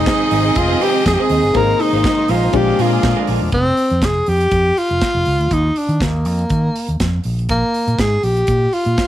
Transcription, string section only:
0.00 1.51 C4 medium
0.00 1.51 G#4 loud
0.00 1.51 D#5 loud
1.54 2.52 G#3 medium
1.54 2.52 D#4 medium
1.54 2.52 C5 medium
2.53 3.51 A#3 medium
2.53 3.51 G#4 medium
2.53 3.51 D5 medium

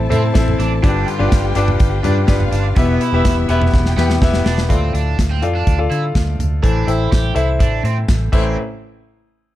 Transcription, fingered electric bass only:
0.11 0.31 A2 loud
0.35 0.55 A1 loud
0.59 0.79 A1 loud
0.84 1.03 G1 loud
1.20 1.30 G1 loud
1.32 1.52 G1 loud
1.56 1.76 G1 loud
1.80 2.00 G1 loud
2.04 2.24 G2 loud
2.28 2.48 G1 loud
2.52 2.72 G1 loud
2.76 2.96 E1 medium
3.12 3.23 E1 loud
3.25 3.45 E1 loud
3.49 3.69 E1 medium
3.73 3.93 E1 loud
3.97 4.17 E2 loud
4.22 4.42 E1 loud
4.46 4.66 E1 loud
4.70 4.90 D2 medium
4.94 5.14 D2 medium
5.19 5.43 D2 medium
5.43 5.63 F2 medium
5.67 5.87 D2 medium
5.91 6.11 D3 medium
6.15 6.35 D2 medium
6.39 6.59 D2 medium
6.64 6.83 A1 medium
6.87 7.07 A1 medium
7.12 7.32 A1 loud
7.36 7.60 C2 medium
7.60 7.80 A1 medium
7.84 8.04 A2 medium
8.08 8.28 A1 medium
8.33 8.55 A1 medium

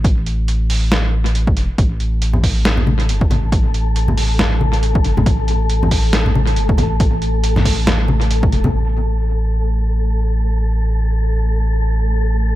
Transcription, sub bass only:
0.00 1.58 A1 medium
1.57 1.68 E1 loud
1.78 3.11 A1 medium
3.09 3.32 G1 medium
3.31 5.03 A1 medium
5.04 5.25 G1 medium
5.26 6.58 A1 loud
6.57 6.80 G1 medium
6.78 8.54 A1 medium
8.52 8.64 E1 loud
8.74 12.55 A1 medium

